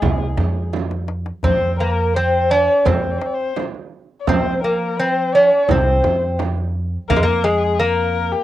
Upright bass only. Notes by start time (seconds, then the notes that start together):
0.02 C2
0.37 F2
1.44 F2
2.86 F2
4.28 F3
5.69 C2
6.04 F2
7.10 F2